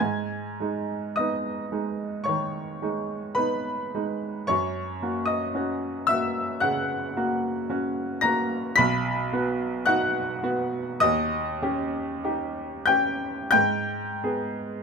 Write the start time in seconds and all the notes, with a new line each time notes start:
0.00 G#2 G#5 G#6
0.60 G#3 D#4
1.16 B3 D#4 D#5 D#6
1.72 G#3 D#4
2.24 D#3 C#5 C#6
2.82 G#3 D#4
3.35 B3 D#4 B4 B5
3.94 G#3 D#4
4.47 F#2 C#5 C#6
5.02 A#3 F#4
5.26 D#5 D#6
5.55 C#4 F#4
6.07 A#3 F#4 E5 E6
6.60 C#3 F#5 F#6
7.17 A#3 F#4
7.70 C#4 F#4
8.21 A#3 F#4 A#5 A#6
8.76 B1 B5 B6
9.32 B3 F#4
9.86 D#4 F#4 F#5 F#6
10.43 B3 F#4
11.00 D#2 D#5 D#6
11.62 C#4 G4
12.24 D#4 G4
12.86 C#4 G4 G5 G6
13.51 G#2 G5 G6
14.24 B3 G#4